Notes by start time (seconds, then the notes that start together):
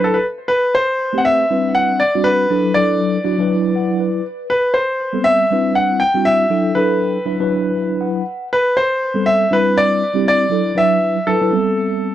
Already playing: F#3 D4 E4 A4
0.04 A4
0.14 B4
0.48 B4
0.75 C5
1.13 A3 C4 G4 B4
1.18 F#5
1.25 E5
1.50 G3 C4 D4 E4 B4
1.75 F#5
2.00 D5
2.15 G3 C4 D4 E4 F#4
2.24 B4
2.50 F#3 D4 E4 A4
2.74 F#3 D4 E4 A4 D5
3.24 F#3 D4 E4 F#4
3.38 F#3 D4 E4 B4
3.76 F#5
4.00 B4
4.50 B4
4.74 C5
5.13 G3 B3 C4 A4
5.24 E5
5.50 G3 C4 D4 E4 B4
5.75 F#5
6.00 G5
6.14 G3 C4 D4 E4 F#4
6.25 E5
6.50 F#3 D4 E4 A4
6.75 F#3 D4 E4 A4 B4
7.25 F#3 D4 E4 B4
7.40 F#3 D4 E4 B4
8.01 F#5
8.53 B4
8.77 C5
9.14 G3 B3 C4 A4
9.26 E5
9.51 G3 C4 D4 E4 B4
9.78 D5
10.13 G3 C4 D4 E4 G4
10.28 D5
10.49 F#3 D4 E4 A4
10.75 F#3 D4 E4 B4 E5
11.26 F#3 D4 E4 A4 B4
11.41 F#3 D4 E4 B4
11.51 G3 B3 C4 A4